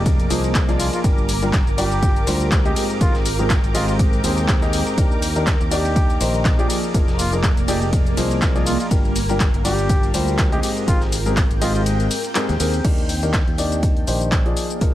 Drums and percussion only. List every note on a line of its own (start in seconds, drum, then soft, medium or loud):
0.06 kick loud
0.06 closed hi-hat medium
0.06 ride medium
0.06 shaker soft
0.20 closed hi-hat soft
0.20 shaker soft
0.30 open hi-hat loud
0.30 ride medium
0.30 shaker medium
0.44 closed hi-hat soft
0.44 ride soft
0.44 shaker soft
0.55 kick loud
0.55 snare loud
0.55 clap loud
0.55 closed hi-hat loud
0.55 ride medium
0.55 shaker soft
0.69 snare soft
0.69 closed hi-hat soft
0.69 shaker soft
0.80 open hi-hat loud
0.80 ride medium
0.80 shaker medium
0.93 closed hi-hat soft
0.93 ride soft
0.93 shaker soft
1.04 kick loud
1.04 closed hi-hat medium
1.04 ride medium
1.04 shaker soft
1.18 shaker soft
1.29 open hi-hat loud
1.29 ride medium
1.29 shaker medium
1.43 ride soft
1.43 shaker soft
1.53 kick loud
1.53 snare loud
1.53 clap loud
1.53 closed hi-hat medium
1.53 ride medium
1.53 shaker soft
1.67 closed hi-hat soft
1.67 shaker soft
1.78 open hi-hat loud
1.78 ride medium
1.78 shaker medium
1.92 closed hi-hat soft
1.92 ride soft
1.92 shaker soft
2.03 kick loud
2.03 closed hi-hat medium
2.03 ride medium
2.03 shaker soft
2.16 closed hi-hat soft
2.16 shaker soft
2.27 open hi-hat loud
2.27 ride medium
2.27 shaker medium
2.41 closed hi-hat soft
2.41 shaker soft
2.52 kick loud
2.52 snare loud
2.52 clap loud
2.52 closed hi-hat medium
2.52 ride medium
2.52 shaker soft
2.65 closed hi-hat soft
2.65 shaker soft
2.76 open hi-hat loud
2.76 ride medium
2.76 shaker medium
2.90 shaker soft
3.01 kick loud
3.01 closed hi-hat medium
3.01 ride medium
3.01 shaker soft
3.15 snare medium
3.15 shaker soft
3.26 open hi-hat loud
3.26 ride medium
3.26 shaker medium
3.39 closed hi-hat soft
3.39 shaker soft
3.50 kick loud
3.50 snare loud
3.50 clap loud
3.50 closed hi-hat medium
3.50 ride medium
3.50 shaker soft
3.64 closed hi-hat soft
3.64 ride soft
3.64 shaker soft
3.75 open hi-hat medium
3.75 ride medium
3.75 shaker medium
3.88 closed hi-hat soft
3.88 shaker soft
3.99 kick loud
3.99 closed hi-hat medium
3.99 ride medium
3.99 shaker soft
4.13 closed hi-hat soft
4.13 shaker soft
4.24 open hi-hat loud
4.24 ride medium
4.24 shaker medium
4.38 closed hi-hat soft
4.38 ride soft
4.38 shaker soft
4.48 kick loud
4.48 snare loud
4.48 clap loud
4.48 closed hi-hat medium
4.48 ride medium
4.48 shaker soft
4.62 snare soft
4.62 closed hi-hat soft
4.62 shaker soft
4.73 open hi-hat medium
4.73 ride medium
4.73 shaker medium
4.87 closed hi-hat soft
4.87 ride soft
4.87 shaker soft
4.98 kick loud
4.98 closed hi-hat medium
4.98 ride medium
4.98 shaker soft
5.12 shaker soft
5.22 open hi-hat loud
5.22 ride medium
5.22 shaker medium
5.36 ride soft
5.36 shaker soft
5.47 kick loud
5.47 snare loud
5.47 clap loud
5.47 closed hi-hat medium
5.47 ride medium
5.47 shaker soft
5.61 closed hi-hat soft
5.61 shaker soft
5.71 open hi-hat medium
5.71 ride medium
5.71 shaker medium
5.85 closed hi-hat soft
5.85 ride soft
5.85 shaker soft
5.96 kick loud
5.96 closed hi-hat medium
5.96 ride medium
5.96 shaker soft
6.10 closed hi-hat soft
6.10 shaker soft
6.21 open hi-hat loud
6.21 ride medium
6.21 shaker medium
6.34 closed hi-hat soft
6.34 shaker soft
6.45 kick loud
6.45 snare loud
6.45 clap loud
6.45 closed hi-hat medium
6.45 ride medium
6.45 shaker soft
6.59 closed hi-hat soft
6.59 shaker soft
6.70 open hi-hat loud
6.70 ride medium
6.70 shaker medium
6.84 closed hi-hat soft
6.84 shaker soft
6.94 kick loud
6.94 closed hi-hat loud
6.94 ride medium
6.94 shaker soft
7.08 snare medium
7.08 shaker soft
7.19 open hi-hat loud
7.19 ride medium
7.19 shaker medium
7.33 closed hi-hat soft
7.33 shaker soft
7.43 kick loud
7.43 snare loud
7.43 clap loud
7.43 closed hi-hat medium
7.43 ride medium
7.43 shaker soft
7.57 closed hi-hat soft
7.57 ride soft
7.57 shaker soft
7.68 open hi-hat medium
7.68 ride medium
7.68 shaker medium
7.82 closed hi-hat soft
7.82 shaker soft
7.93 kick loud
7.93 closed hi-hat medium
7.93 ride medium
7.93 shaker soft
8.06 closed hi-hat soft
8.06 shaker soft
8.17 open hi-hat loud
8.17 ride medium
8.17 shaker medium
8.31 closed hi-hat soft
8.31 ride soft
8.31 shaker soft
8.42 kick loud
8.42 snare loud
8.42 clap loud
8.42 closed hi-hat medium
8.42 ride medium
8.42 shaker soft
8.56 snare soft
8.56 closed hi-hat soft
8.56 shaker soft
8.66 open hi-hat medium
8.66 ride medium
8.66 shaker medium
8.80 closed hi-hat soft
8.80 ride soft
8.80 shaker soft
8.91 kick loud
8.91 closed hi-hat loud
8.91 ride medium
8.91 shaker soft
9.05 shaker soft
9.16 open hi-hat loud
9.16 ride medium
9.16 shaker medium
9.29 closed hi-hat soft
9.29 ride soft
9.29 shaker soft
9.40 kick loud
9.40 snare loud
9.40 clap loud
9.40 closed hi-hat medium
9.40 ride medium
9.40 shaker soft
9.54 closed hi-hat soft
9.54 shaker soft
9.65 open hi-hat medium
9.65 ride medium
9.65 shaker medium
9.79 closed hi-hat soft
9.79 ride soft
9.79 shaker soft
9.89 kick loud
9.89 closed hi-hat loud
9.89 ride medium
9.89 shaker soft
10.03 closed hi-hat soft
10.03 shaker soft
10.14 open hi-hat loud
10.14 ride medium
10.14 shaker medium
10.28 closed hi-hat soft
10.28 shaker soft
10.38 kick loud
10.38 snare loud
10.38 clap loud
10.38 closed hi-hat loud
10.38 ride medium
10.38 shaker soft
10.52 closed hi-hat soft
10.52 shaker soft
10.63 open hi-hat medium
10.63 ride medium
10.63 shaker medium
10.77 closed hi-hat soft
10.77 shaker soft
10.88 kick loud
10.88 closed hi-hat loud
10.88 ride medium
10.88 shaker soft
11.01 snare medium
11.01 shaker soft
11.12 open hi-hat loud
11.12 ride medium
11.12 shaker medium
11.26 closed hi-hat soft
11.26 shaker soft
11.37 kick loud
11.37 snare loud
11.37 clap loud
11.37 closed hi-hat loud
11.37 ride medium
11.37 shaker soft
11.51 closed hi-hat soft
11.51 ride soft
11.51 shaker soft
11.62 open hi-hat medium
11.62 ride medium
11.62 shaker medium
11.75 closed hi-hat soft
11.75 shaker soft
11.86 closed hi-hat loud
11.86 ride medium
11.86 shaker soft
12.00 closed hi-hat soft
12.00 shaker soft
12.11 open hi-hat loud
12.11 ride medium
12.11 shaker medium
12.24 closed hi-hat soft
12.24 ride soft
12.24 shaker soft
12.35 snare loud
12.35 clap loud
12.35 closed hi-hat loud
12.35 ride medium
12.35 shaker soft
12.49 snare soft
12.49 closed hi-hat soft
12.49 shaker soft
12.60 open hi-hat medium
12.60 ride medium
12.60 shaker medium
12.74 closed hi-hat soft
12.74 ride soft
12.74 shaker soft
12.84 kick loud
12.84 closed hi-hat loud
12.84 ride medium
12.84 crash loud
12.84 shaker soft
12.98 closed hi-hat soft
13.09 open hi-hat loud
13.09 ride medium
13.09 shaker medium
13.23 closed hi-hat soft
13.23 ride soft
13.23 shaker soft
13.34 kick loud
13.34 snare loud
13.34 clap loud
13.34 closed hi-hat medium
13.34 ride medium
13.34 shaker soft
13.47 closed hi-hat soft
13.58 open hi-hat medium
13.58 ride medium
13.58 shaker medium
13.72 ride soft
13.72 shaker soft
13.83 kick loud
13.83 closed hi-hat medium
13.83 ride medium
13.83 shaker soft
13.97 closed hi-hat soft
14.07 open hi-hat loud
14.07 ride medium
14.07 shaker medium
14.21 shaker soft
14.32 kick loud
14.32 snare loud
14.32 clap loud
14.32 closed hi-hat medium
14.32 ride medium
14.32 shaker soft
14.46 closed hi-hat soft
14.57 open hi-hat medium
14.57 ride medium
14.57 shaker medium
14.70 closed hi-hat soft
14.70 shaker soft
14.81 kick loud
14.81 closed hi-hat medium
14.81 ride medium
14.81 shaker soft